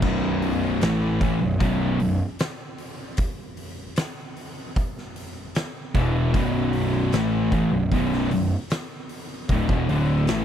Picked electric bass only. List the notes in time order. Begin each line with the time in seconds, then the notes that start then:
0.02 B0
0.83 A1
1.22 A1
1.42 B0
1.61 B0
2.00 B0
5.95 E1
6.34 B0
7.13 A1
7.52 A1
7.73 B0
7.91 B0
8.31 B0
9.49 D1
9.69 E1
9.90 D1
10.30 A1